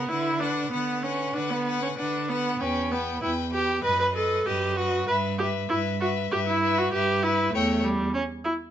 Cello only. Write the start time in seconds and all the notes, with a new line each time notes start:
0.09 D3
0.72 D3
1.35 D3
1.98 D3
2.61 E2
3.23 E2
3.84 F#2
4.47 F#2
5.08 G2
5.70 G2
6.32 G2
6.93 G2
7.53 E2